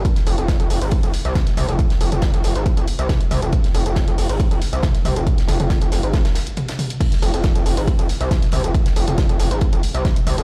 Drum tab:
CC |----------------|----------------|----------------|----------------|
RD |x-x-x---x-x-x-x-|x-x-xxx-xxx-xxx-|x-x-x---x-x-x-x-|x-x-xxx-xxxxxxxx|
HH |xxoxxxoxxxoxxxox|xxoxxxoxxxoxxxox|xxoxxxoxxxoxxxox|xxoxxxoxxxoxxxox|
SD |-o--o-----o-oo--|-o--o-o-----o---|-o--o-----o-oo--|-oo-o-o-ooo--o--|
T2 |------------o-o-|---o--------o-o-|------------o-o-|--oo--------o-o-|
BD |o---o---o---o---|o---o---o---o---|o---o---o---o---|o---o---o-------|

CC |x---------------|----------------|
RD |x-x-x---x-x-x-x-|x-x-xxx-xxx-xxx-|
HH |xxoxxxoxxxoxxxox|xxoxxxoxxxoxxxox|
SD |-o--o-----o-oo--|-o--o-o-----o---|
T2 |------------o-o-|---o--------o-o-|
BD |o---o---o---o---|o---o---o---o---|